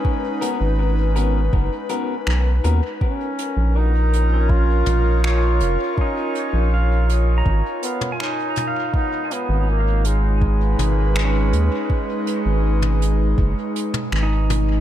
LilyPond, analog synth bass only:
\new Staff \with { instrumentName = "Analog synth bass" } { \clef bass \time 4/4 \key gis \dorian \tempo 4 = 81 r8. gis,,4~ gis,,16 fis,,16 r8. b,,8 dis,16 r16 | r8. ais,,4.~ ais,,16 ais,,4 eis,,16 r16 | r8. ais,,4~ ais,,16 gis,,16 r4. r16 | r8. gis,,4.~ gis,,16 gis,,4 dis,16 r16 |
r8. gis,,4~ gis,,16 fis,,16 r8. gis,,4 | }